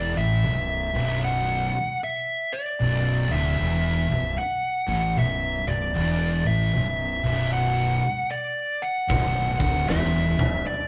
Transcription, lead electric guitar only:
Already playing: D5
0.17 E5
1.24 F#5
2.04 E5
2.53 D5
3.31 E5
4.38 F#5
5.19 E5
5.68 D5
6.47 E5
7.53 F#5
8.31 D5
8.82 F#5
9.61 F#5
9.89 E5
10.67 D5

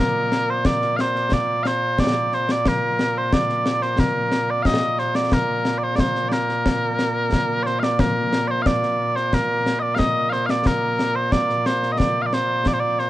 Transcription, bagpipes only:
Already playing: A#2 A#3
0.00 A#4
0.50 C5
0.66 D5
0.96 F5
1.01 C5
1.33 D5
1.63 C5 F5
2.00 D5
2.34 C5
2.52 D5
2.68 A#4
3.18 C5
3.33 D5
3.82 C5
3.99 A#4
4.50 D5
4.63 D#5 F5
4.99 C5
5.15 D5
5.33 A#4
5.78 D5
5.84 C5
5.96 D5
6.00 C5
6.29 A#4 D5
7.63 C5 D5
7.79 D5 F5
8.00 A#4
8.48 C5 D5
8.62 F5
8.67 D5
9.16 C5
9.34 A#4
9.79 D5 D#5
9.95 D#5 F5
10.29 C5 F5
10.46 F5
10.50 D5
10.67 A#4
11.15 C5
11.32 D5
11.66 C5
11.92 D#5
11.98 D5
12.22 F5
12.26 D5
12.34 C5
12.67 D5
12.74 C5
12.80 D5
13.00 C5

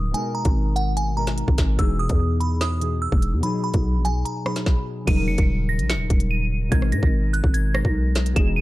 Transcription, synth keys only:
Already playing: C#3 F#3 D#4 A#4
0.11 B2 G#3 D#4
0.17 A#4
1.16 B2 G#3 D#4 A#4
1.76 B2 E3 D#4
1.81 G#4
2.80 B2 E3 D#4 G#4
3.40 B2 F#3 D#4
3.46 G#4
4.45 B2 F#3 D#4 G#4
5.05 C#3 F#3 D#4
5.10 A#4
6.69 B2 G#3 D#4
6.74 A#4
7.74 B2 G#3 D#4 A#4
8.33 B2 E3 D#4
8.39 G#4

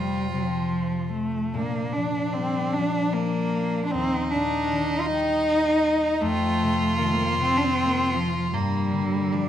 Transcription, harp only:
Already playing: F2 C3
0.34 C3
1.54 A#2
1.97 F3
2.37 G3
2.78 F3
3.94 D#2
4.34 A#2
4.72 D#3
5.09 G3
6.23 F2
6.62 C3
7.00 D#3
7.38 C3
8.53 G2
8.93 D3
9.33 F3

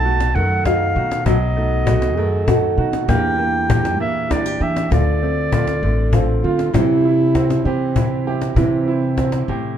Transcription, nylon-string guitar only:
Already playing: B2 D#4 F#4
0.05 A3
0.36 D#3
0.66 F#4
0.97 D#4
1.27 B2 F#4
1.58 D#4
1.88 A3
2.17 D#3
2.49 F#4
2.79 D#4
3.09 E2 E3 G3 D4 G4
3.39 D4
3.70 G3
4.00 E3
4.30 E4
4.46 G4
4.61 D4
4.90 D2 F4
5.23 C4
5.52 A3
5.83 D3
6.14 F4
6.44 C4
6.74 C3 E3 G3 C4
7.66 E3
7.97 C4
8.28 E4
8.57 C3 E4
9.49 A2

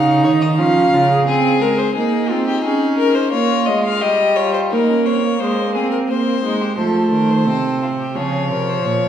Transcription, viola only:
Already playing: D#4
0.59 C#4
0.94 F4
1.10 G#4
1.27 C4
1.62 G#3
1.97 A#3
2.31 C4
2.65 C#4
3.34 A#3
3.68 G#3
4.02 G3
4.72 A#3
5.41 G#3
5.76 C4
6.09 A#3
6.43 G#3
6.78 A3
7.47 C4
8.15 F3

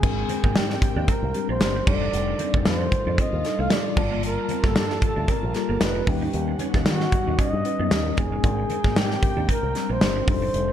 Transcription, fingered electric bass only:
0.03 G#1
0.44 G#1
0.56 G#2
0.96 D#2
1.23 C2
1.49 A#1
1.60 G1
1.87 F1
2.13 F1
2.54 F1
2.66 F2
3.07 F2
3.33 D#2
3.59 C2
3.97 G1
4.64 G1
4.76 G2
5.17 D2
5.43 A#1
5.69 G1
5.81 F1
6.08 D#2
6.34 D#2
6.74 D#2
6.87 D#3
7.27 D#2
7.53 G2
7.79 F#2
7.91 D#2
8.18 F1
8.44 G#1
8.84 G#1
8.96 G#2
9.36 D#2
9.63 C2
9.90 A#1
10.02 G1
10.28 F1
10.54 F1

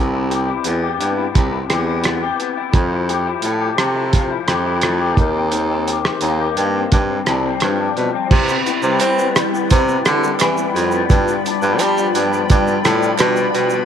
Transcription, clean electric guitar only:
Already playing: C3 B3 E4 G4
0.13 E4
0.30 G4
0.47 E4
0.65 B3
0.82 G4
0.99 B3
1.17 E4
1.34 C3
1.51 E4
1.69 G4
1.87 E4
2.04 B3
2.22 G4
2.39 B3
2.56 E4
2.74 F3
2.91 E4
3.09 G4
3.26 E4
3.44 A3
3.60 G4
3.78 A3
3.96 E4
4.13 F3
4.31 E4
4.48 G4
4.65 E4
4.82 A3
5.00 G4
5.17 D#3
5.34 C4
5.52 D#3
5.70 C4
5.88 G4
6.05 C4
6.22 A#3
6.40 G4
6.57 A#3
6.74 C4
6.92 G2
7.10 C4
7.27 D4
7.45 C4
7.62 F3
7.79 D4
7.96 F3
8.14 C4
8.31 C3
8.49 B3
8.66 E4
8.83 G3
9.00 E4
9.18 B3
9.36 G3
9.53 B3
9.70 C3
9.87 B3
10.05 E4
10.23 G3
10.40 E4
10.58 B3
10.75 G3
10.93 B3
11.10 G2
11.28 B3
11.45 D4
11.63 F3
11.80 D4
11.97 B3
12.15 F3
12.32 B3
12.50 G2
12.67 B3
12.84 D4
13.02 F3
13.19 D4
13.37 B3
13.54 F3
13.71 B3

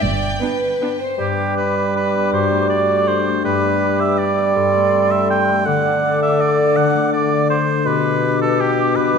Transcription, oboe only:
1.20 G4
1.57 B4
1.96 B4
2.33 C5
2.70 D5
3.08 C5
3.45 B4
4.00 E5
4.18 D5
5.11 E5
5.30 G5
5.66 F#5
6.22 E5
6.41 D5
6.77 F#5
7.13 D5
7.50 C5
7.86 B4
8.41 A4
8.61 G4
8.96 B4

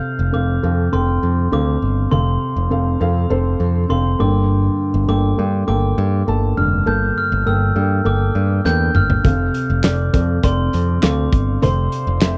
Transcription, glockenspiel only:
Already playing: F6
0.34 D6
0.93 C6
1.53 D6
2.11 C6
3.90 C6
4.20 D6
5.09 D6
5.68 D6
6.57 F6
6.87 G6
7.18 F6
7.47 E6
8.06 D6
8.66 G6
8.96 F6
9.85 D6
10.44 C6
11.03 D6
11.63 C6

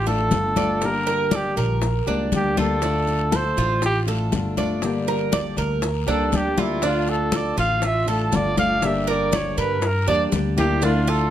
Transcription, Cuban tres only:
0.07 A4
0.57 D5
1.07 A#4
1.32 D5
1.57 A#4
2.08 D4
2.57 F4
2.82 D4
3.33 A4
3.58 F4
4.08 A4
4.58 D5
5.08 A#4
5.33 D5
5.58 A#4
6.08 D4
6.58 F4
6.83 D4
7.33 A4
7.58 F4
8.08 A4
8.58 D5
9.07 A#4
9.32 D5
9.58 A#4
10.08 D4
10.58 F4
10.82 D4
11.08 F4

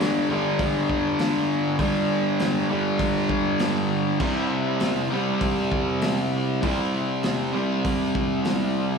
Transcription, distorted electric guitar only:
Already playing: G2 D3 G3
0.30 G2 D3 G3
1.79 G2 D3 G3
2.69 G2 D3 G3
4.19 C3 G3 C4
5.11 C3 G3 C4
6.62 C3 G3 C4
7.53 C3 G3 C4

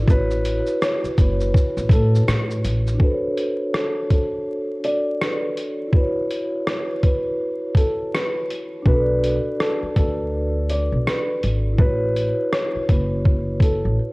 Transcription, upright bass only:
0.08 A1
1.04 muted upright bass stroke
1.18 F#1
1.77 A1
1.90 A2
2.28 A2
2.65 A1
8.86 B1
9.83 muted upright bass stroke
9.97 D2
10.92 B1
11.44 G#1
11.79 A1
12.75 muted upright bass stroke
12.89 F#1
13.85 A1

